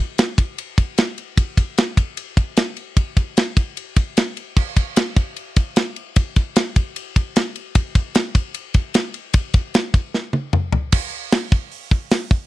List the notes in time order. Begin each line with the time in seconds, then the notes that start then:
0.18 snare, ride
0.38 kick, ride
0.58 ride
0.78 kick, ride
0.98 snare, ride
1.18 ride
1.37 kick, ride
1.57 kick, ride
1.78 snare, ride
1.97 kick, ride
2.17 ride
2.37 kick, ride
2.57 snare, ride
2.77 ride
2.97 kick, ride
3.17 kick, ride
3.37 snare, ride
3.57 kick, ride
3.77 ride
3.96 kick, ride
4.17 snare, ride
4.37 ride
4.57 kick, crash
4.76 kick, ride
4.96 snare, ride
5.16 kick, ride
5.36 ride
5.56 kick, ride
5.76 snare, ride
5.96 ride
6.16 kick, ride
6.36 kick, ride
6.56 snare, ride
6.76 kick, ride
6.96 ride
7.16 kick, ride
7.36 snare, ride
7.56 ride
7.75 kick, ride
7.95 kick, ride
8.15 snare, ride
8.35 kick, ride
8.54 ride
8.74 kick, ride
8.94 snare, ride
9.14 ride
9.33 kick, ride
9.54 kick, ride
9.74 snare, ride
9.94 kick, ride
10.14 snare
10.33 high tom
10.53 mid tom
10.72 floor tom
10.92 kick, crash
11.32 snare, open hi-hat
11.52 kick
11.72 open hi-hat
11.91 kick
12.11 snare, open hi-hat
12.31 kick